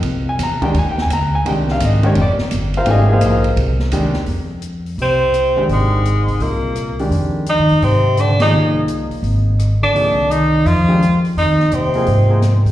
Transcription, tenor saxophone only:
X:1
M:4/4
L:1/8
Q:"Swing" 1/4=170
K:Fdor
V:1 name="Tenor saxophone"
z8 | z8 | z8 | z4 C4 |
A,4 B,3 z | z2 E2 C2 D E- | E2 z4 z D- | D2 E2 F3 z |
E2 C4- C z |]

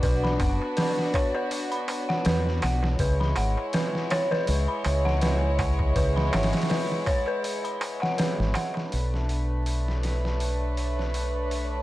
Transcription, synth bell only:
X:1
M:4/4
L:1/16
Q:"Swing 16ths" 1/4=81
K:Bdor
V:1 name="Synth bell"
B b f z B2 c B2 b z f B z f z | B b f z B2 c B2 b z f B z f z | B b f z B2 c B2 b z f B z f z | z16 |]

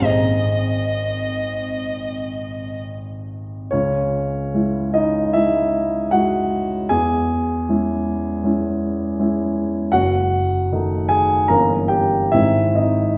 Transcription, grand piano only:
X:1
M:4/4
L:1/8
Q:1/4=75
K:C#m
V:1 name="Grand piano"
z8 | [Cc]3 [Dd] [Ee]2 [Ff]2 | [Gg]8 | [Ff]3 [Gg] [_B_b] [=G=g] [Ee] [Dd] |]
V:2 name="Grand piano" clef=bass
[G,,,^B,Gd]8 | C,,2 [G,E]2 G,2 [G,E]2 | E,,2 [G,CE]2 [G,CE]2 [G,CE]2 | F,,,2 [D,A,D]2 [=G,,,E,_B,_D]2 [^G,,,^D,G,^B,]2 |]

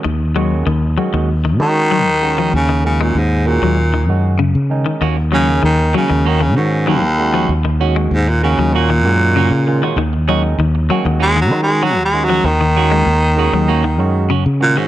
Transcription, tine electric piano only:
X:1
M:4/4
L:1/8
Q:1/4=97
K:Ebm
V:1 name="Tine electric piano"
z [E,A,DG] z [E,A,DG] z [E,A,DG] z [E,A,DG] | z [E,A,DG] z [E,A,DG] z [E,A,DG] z [E,A,DE] | z [E,A,DA] z [E,A,DG] z [E,A,DG] z [E,A,DG] | z [E,A,DG] z [E,A,DG] z [E,A,DG] z [E,A,DF] |
z [E,A,DE] z [E,A,DG] z [E,A,DG] z [E,A,DG] | z [E,A,DG] z [E,A,DA] z [E,A,DG] z [E,A,DG] |]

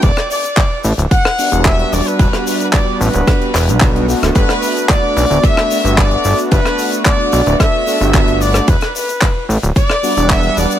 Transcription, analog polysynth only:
X:1
M:4/4
L:1/16
Q:1/4=111
K:Em
V:1 name="Analog polysynth"
z8 z2 [G,B,DF] [G,B,DF]4- [G,B,DF]- | [G,B,DF]8- [G,B,DF]2 z [G,B,DF]2 [G,B,DF] [A,B,DF]2- | [A,B,DF]8- [A,B,DF]2 [A,B,DF] [A,B,DF]4- [A,B,DF]- | [A,B,DF]8- [A,B,DF]2 [A,B,DF] [A,B,DF]4- [A,B,DF] |
z8 z2 [G,B,DF] [G,B,Df]4- [G,B,Df] |]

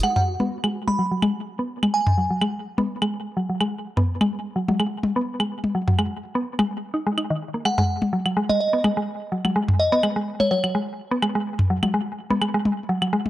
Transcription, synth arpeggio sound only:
X:1
M:4/4
L:1/16
Q:"Swing 16ths" 1/4=126
K:G#m
V:1 name="Synth arpeggio sound" clef=bass
G, z2 B, z G, z2 F, F, G, z2 B, z G, | z2 F, F, G, z2 B, z G, z2 F, F, G, z | z B, z G, z2 F, F, G, z2 B, z G, z2 | F, F, G, z2 B, z G, z2 D G, D D, z A, |
G, G, z2 F, F, G, z2 B, G, G, z2 F, F, | G, z2 B, G, G, z2 F, F, G, z2 B, G, G, | z2 F, F, G, z2 B, G, G, z2 F, F, G, z |]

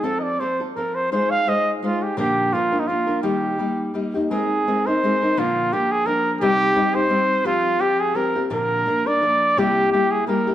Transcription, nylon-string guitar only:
X:1
M:3/4
L:1/8
Q:"Swing" 1/4=171
K:Ablyd
V:1 name="Nylon-string guitar"
[F,CF=A]2 [F,CFA] [CFA] [F,CFA]2 | [A,EFc]2 [A,EFc]2 [A,EFc]2 | [B,,D,F,B,DB]2 [F,B,DB] [F,B,DB] [F,B,DB] [F,B,DB] | [E,G,B,EG]2 [G,B,EG]2 [G,B,EG] [B,EG] |
[A,CEB]2 [A,CEB] [CEB] [A,CEB] [CEB] | [B,,D,F,B,DB]2 [F,B,DB]2 [F,B,DB]2 | [C,G,CEG]2 [G,CEG] [CEG] [G,CEG]2 | [F,CFG]2 [F,CFG]2 [F,CFG] [CFG] |
[B,,D,F,B,DB]2 [F,B,DB] [F,B,DB] [F,B,DB]2 | [C,G,B,=EG]2 [G,B,EG]2 [G,B,EG] [B,EG] |]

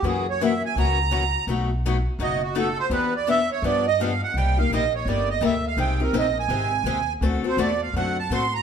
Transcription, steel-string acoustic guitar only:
X:1
M:4/4
L:1/16
Q:"Swing" 1/4=167
K:G
V:1 name="Steel-string acoustic guitar"
[^C,E,^A,^CF]2 z2 [C,E,A,CF] z3 [C,E,A,CF]2 z2 [C,E,A,CF] z3 | [B,,F,A,^DF]2 z2 [B,,F,A,DF] z3 [B,,F,A,DF]2 z2 [B,,F,A,DF] z3 | [E,B,DG]2 z2 [E,B,DG] z3 [D,=F,B,DG]2 z2 [D,F,B,DG] z3 | [K:Cm] [C,G,B,EG]2 [B,EG]2 [C,G,B,EG] z3 [C,G,B,EG]2 z2 [C,G,B,EG] z3 |
[C,A,CEG]2 [CEG]2 [C,A,CEG] z3 [C,A,CEG]2 z2 [C,A,CEG] z3 | [D,=A,C^F=A]2 [CFA]2 [D,A,CFA] z3 [D,A,CFA]2 z2 [D,A,CFA] z3 |]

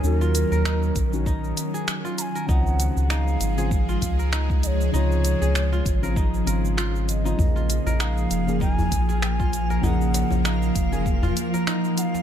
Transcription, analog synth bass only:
X:1
M:4/4
L:1/16
Q:"Swing 16ths" 1/4=98
K:Db
V:1 name="Analog synth bass" clef=bass
E,,3 E,,3 B,,,4 z6 | D,,3 D,,3 A,,,4 D,,6 | D,,3 D,,3 A,,,4 A,,,6 | B,,,3 B,,,3 F,,,4 B,,,6 |
B,,,3 B,,,3 F,,,4 z6 |]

